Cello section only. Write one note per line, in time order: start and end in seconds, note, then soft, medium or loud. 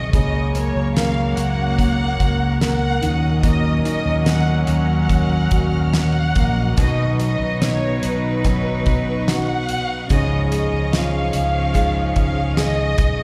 0.13 2.98 F#2 medium
0.13 2.98 C#3 medium
0.13 2.97 A#3 loud
3.02 6.74 A#2 medium
3.02 6.74 F#3 medium
3.02 6.74 C#4 loud
6.77 10.06 B2 medium
6.77 10.06 F#3 medium
6.77 10.06 D#4 loud
10.09 13.23 G#2 loud
10.09 13.23 F3 medium
10.09 13.23 C#4 loud